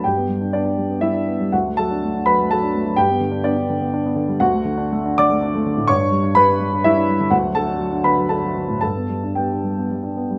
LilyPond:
<<
  \new Staff \with { instrumentName = "Grand piano" } { \time 3/4 \key g \lydian \tempo 4 = 123 <g' g''>4 <d' d''>4 <e' e''>4 | <fis' fis''>8 <a' a''>4 <b' b''>8 <a' a''>4 | <g' g''>4 <d' d''>4 r4 | <fis' fis''>4. <d'' d'''>4. |
<cis'' cis'''>4 <b' b''>4 <e' e''>4 | <fis' fis''>8 <a' a''>4 <b' b''>8 <a' a''>4 | <a' a''>4 <g' g''>4 r4 | }
  \new Staff \with { instrumentName = "Grand piano" } { \time 3/4 \key g \lydian g,16 b16 g16 d'16 b16 d'16 g16 b16 g16 d'16 b16 g16 | d,16 a16 fis16 d'16 a16 d'16 fis16 a16 fis16 d'16 a16 fis16 | g,16 b16 d16 d'16 b16 d'16 d16 b16 d'16 b16 d16 g16 | d,16 a16 d16 d'16 a16 d'16 d16 a16 d'16 a16 d16 a,16 |
g,16 d'16 g16 d'16 g8 g16 d'16 g16 d'16 g16 d16 | d,16 fis16 d16 d'16 fis16 d'16 d16 fis16 d'16 fis16 d16 a,16 | g,16 b16 g16 d'16 b16 d'16 g16 b16 g16 d'16 b16 g16 | }
>>